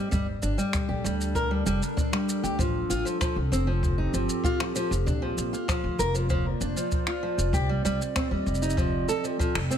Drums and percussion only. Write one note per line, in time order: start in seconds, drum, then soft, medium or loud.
0.12 kick loud
0.12 shaker soft
0.43 shaker loud
0.59 shaker medium
0.73 finger snap medium
0.73 kick loud
0.73 shaker soft
1.06 shaker medium
1.21 shaker medium
1.35 kick medium
1.35 shaker soft
1.66 shaker medium
1.82 shaker medium
1.97 kick loud
1.97 shaker soft
2.13 finger snap medium
2.29 shaker medium
2.44 shaker medium
2.59 kick loud
2.59 shaker medium
2.90 shaker medium
3.06 shaker medium
3.21 finger snap medium
3.21 kick loud
3.21 shaker medium
3.53 shaker medium
3.83 kick loud
3.83 shaker soft
4.14 shaker medium
4.29 shaker medium
4.44 kick loud
4.44 shaker medium
4.60 finger snap medium
4.76 shaker medium
4.92 shaker medium
5.07 kick loud
5.07 shaker soft
5.38 shaker medium
5.54 shaker medium
5.68 finger snap medium
5.68 kick loud
5.68 shaker medium
6.00 shaker medium
6.15 shaker medium
6.30 kick loud
6.30 shaker medium
6.61 shaker medium
6.77 shaker medium
6.92 kick medium
6.92 shaker medium
7.07 finger snap medium
7.39 shaker medium
7.53 kick loud
7.53 shaker medium
7.85 shaker medium
8.02 shaker medium
8.16 finger snap medium
8.16 kick loud
8.16 shaker medium
8.47 shaker soft
8.55 shaker soft
8.62 shaker medium
8.70 shaker medium
8.77 kick loud
8.77 shaker soft
9.09 shaker medium
9.24 shaker medium
9.39 kick loud
9.39 shaker medium
9.55 finger snap medium
9.71 shaker medium